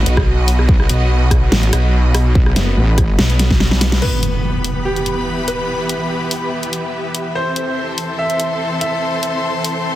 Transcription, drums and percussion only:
0.06 closed hi-hat
0.17 kick, cross-stick
0.48 open hi-hat
0.59 cross-stick
0.69 kick
0.80 cross-stick
0.89 closed hi-hat
1.31 kick, cross-stick, closed hi-hat
1.52 snare
1.63 closed hi-hat
1.73 cross-stick, closed hi-hat
2.15 cross-stick, open hi-hat
2.35 kick
2.46 cross-stick
2.56 snare, closed hi-hat
2.98 kick, cross-stick, closed hi-hat
3.19 snare
3.30 closed hi-hat
3.39 snare, closed hi-hat
3.50 kick, snare
3.60 snare
3.71 snare
3.81 snare, open hi-hat
3.92 snare
4.02 crash
4.23 closed hi-hat
4.64 open hi-hat
4.96 closed hi-hat
5.06 closed hi-hat
5.48 closed hi-hat
5.89 closed hi-hat
6.31 open hi-hat
6.63 closed hi-hat
6.73 closed hi-hat
7.15 closed hi-hat
7.56 closed hi-hat
7.98 open hi-hat
8.30 closed hi-hat
8.40 closed hi-hat
8.81 closed hi-hat
9.23 closed hi-hat
9.64 open hi-hat

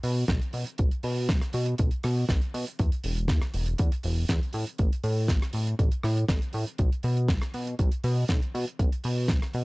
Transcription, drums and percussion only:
0.03 open hi-hat
0.28 kick, snare, closed hi-hat
0.41 closed hi-hat
0.53 open hi-hat
0.67 closed hi-hat
0.78 kick, closed hi-hat
0.91 closed hi-hat
1.03 open hi-hat
1.17 open hi-hat
1.29 kick, snare, closed hi-hat
1.41 cross-stick, closed hi-hat
1.53 open hi-hat
1.66 closed hi-hat
1.78 kick, closed hi-hat
1.91 closed hi-hat
2.03 cross-stick, open hi-hat
2.29 kick, snare, closed hi-hat
2.41 closed hi-hat
2.54 open hi-hat
2.67 closed hi-hat
2.79 kick, closed hi-hat
2.92 closed hi-hat
3.04 open hi-hat
3.17 closed hi-hat
3.28 kick, snare, closed hi-hat
3.42 cross-stick, closed hi-hat
3.54 open hi-hat
3.66 closed hi-hat
3.78 kick, closed hi-hat
3.92 closed hi-hat
4.03 open hi-hat
4.28 kick, snare, closed hi-hat
4.43 closed hi-hat
4.53 open hi-hat
4.67 closed hi-hat
4.78 kick, closed hi-hat
4.93 closed hi-hat
5.04 open hi-hat
5.18 open hi-hat
5.28 kick, snare, closed hi-hat
5.42 cross-stick, closed hi-hat
5.53 open hi-hat
5.67 closed hi-hat
5.79 kick, closed hi-hat
5.92 closed hi-hat
6.04 cross-stick, open hi-hat
6.17 closed hi-hat
6.29 kick, snare, closed hi-hat
6.42 closed hi-hat
6.53 open hi-hat
6.67 closed hi-hat
6.78 kick, closed hi-hat
6.92 closed hi-hat
7.03 open hi-hat
7.17 closed hi-hat
7.28 kick, snare, closed hi-hat
7.42 cross-stick, closed hi-hat
7.54 open hi-hat
7.67 closed hi-hat
7.79 kick, closed hi-hat
7.91 closed hi-hat
8.04 open hi-hat
8.28 kick, snare, closed hi-hat
8.42 closed hi-hat
8.55 open hi-hat
8.67 closed hi-hat
8.79 kick, closed hi-hat
8.92 closed hi-hat
9.04 open hi-hat
9.18 open hi-hat
9.28 kick, snare, closed hi-hat
9.42 cross-stick, closed hi-hat
9.53 open hi-hat

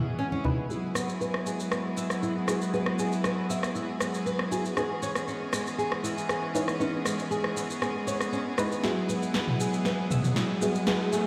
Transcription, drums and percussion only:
0.32 muted conga
0.45 low conga
0.70 shaker
0.95 cross-stick, shaker
1.09 shaker
1.21 shaker
1.34 cross-stick
1.46 shaker
1.60 shaker
1.72 cross-stick, shaker
1.97 shaker
2.10 cross-stick, shaker
2.23 shaker
2.48 cross-stick, shaker
2.61 shaker
2.74 shaker
2.86 cross-stick
2.99 shaker
3.12 shaker
3.24 cross-stick, shaker
3.50 shaker
3.63 cross-stick, shaker
3.75 shaker
4.01 cross-stick, shaker
4.14 shaker
4.26 shaker
4.39 cross-stick
4.52 shaker
4.65 shaker
4.77 cross-stick, shaker
5.03 shaker
5.15 cross-stick, shaker
5.28 shaker
5.53 cross-stick, shaker
5.67 shaker
5.79 shaker
5.92 cross-stick
6.04 shaker
6.18 shaker
6.29 cross-stick, shaker
6.55 shaker
6.68 cross-stick, shaker
6.81 shaker
7.05 cross-stick, shaker
7.19 shaker
7.31 shaker
7.44 cross-stick
7.57 shaker
7.70 shaker
7.82 cross-stick, shaker
8.08 shaker
8.21 cross-stick, shaker
8.33 shaker
8.58 cross-stick, shaker
8.72 shaker
8.84 snare, shaker
9.09 shaker
9.23 shaker
9.34 snare, shaker
9.48 mid tom
9.60 shaker
9.73 shaker
9.85 snare, shaker
10.11 mid tom, shaker
10.24 mid tom, shaker
10.36 snare, shaker
10.62 shaker
10.75 shaker
10.87 snare, shaker
11.13 shaker

